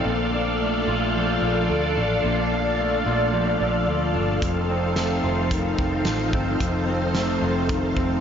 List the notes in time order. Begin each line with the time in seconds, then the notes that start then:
Already playing: D#3 A3 C4 F4 A4 F5
0.05 A#1 A#2 D4 D5
0.33 D4
0.61 A3
0.88 A#1 F4
1.15 F3
1.42 A#1 D4
1.70 D2 F4
1.97 A1 D4
2.24 A#1 A#2
2.52 D4
2.79 A3
3.06 A#1 F4
3.33 F3
3.60 A#1 D4
3.88 D2 F4
4.15 G1 D4
4.42 F2 D#4 C5, kick, closed hi-hat
4.69 C4
4.96 A3, snare, closed hi-hat
5.24 F1 F4
5.51 D#3, kick, closed hi-hat
5.78 F1 C4, kick
6.05 A1 F4, snare, closed hi-hat
6.33 G1 C4, kick
6.60 F1 F2, kick, closed hi-hat
6.87 C4
7.15 A3, snare, closed hi-hat
7.42 F1 F4
7.69 D#3, kick, closed hi-hat
7.96 F1 C4, kick